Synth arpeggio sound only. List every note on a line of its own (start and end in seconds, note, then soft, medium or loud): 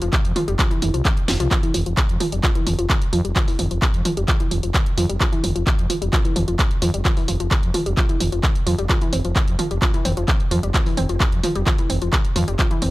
0.02 0.09 F3 medium
0.36 0.40 F3 loud
0.48 0.52 G3 medium
0.59 0.63 F3 loud
0.71 0.81 E3 loud
0.82 0.89 E3 medium
0.94 0.98 F3 medium
1.28 1.36 F3 medium
1.40 1.47 F3 loud
1.51 1.56 F3 loud
1.63 1.74 E3 loud
1.74 1.82 F3 medium
1.86 1.93 F3 medium
2.20 2.25 F3 loud
2.32 2.37 G3 medium
2.44 2.48 F3 loud
2.56 2.66 E3 loud
2.67 2.74 F3 medium
2.79 2.85 F3 medium
3.13 3.17 F3 loud
3.25 3.29 G3 medium
3.36 3.40 F3 loud
3.48 3.58 E3 loud
3.59 3.66 F3 medium
3.71 3.78 F3 medium
4.05 4.10 F3 loud
4.17 4.21 G3 medium
4.28 4.33 F3 loud
4.40 4.51 E3 loud
4.51 4.59 F3 medium
4.63 4.70 F3 medium
4.97 5.02 F3 loud
5.09 5.13 G3 medium
5.21 5.25 F3 loud
5.32 5.43 E3 loud
5.44 5.51 F3 medium
5.56 5.62 F3 medium
5.90 5.94 F3 loud
6.02 6.06 G3 medium
6.13 6.17 F3 loud
6.25 6.35 E3 loud
6.36 6.43 F3 medium
6.48 6.55 F3 medium
6.82 6.86 F3 loud
6.94 6.98 G3 medium
7.05 7.10 F3 loud
7.17 7.27 E3 loud
7.28 7.36 F3 medium
7.40 7.47 F3 medium
7.74 7.79 F3 loud
7.86 7.90 G3 medium
7.97 8.02 F3 loud
8.09 8.20 E3 loud
8.20 8.28 F3 medium
8.32 8.39 F3 medium
8.67 8.71 F3 loud
8.78 8.83 G3 medium
8.90 8.94 F3 loud
9.02 9.12 E3 loud
9.13 9.20 C4 medium
9.25 9.32 F3 medium
9.59 9.63 F3 loud
9.71 9.75 G3 medium
9.82 9.86 F3 loud
9.94 10.04 E3 loud
10.05 10.12 C4 medium
10.17 10.24 F3 medium
10.51 10.56 F3 loud
10.63 10.67 G3 medium
10.74 10.79 F3 loud
10.86 10.97 E3 loud
10.97 11.05 C4 medium
11.09 11.16 F3 medium
11.44 11.48 F3 loud
11.56 11.60 G3 medium
11.67 11.71 F3 loud
11.79 11.89 E3 loud
11.90 11.97 C4 medium
12.02 12.09 F3 medium
12.36 12.40 F3 loud
12.48 12.52 G3 medium
12.59 12.63 F3 loud
12.71 12.81 E3 loud
12.82 12.89 C4 medium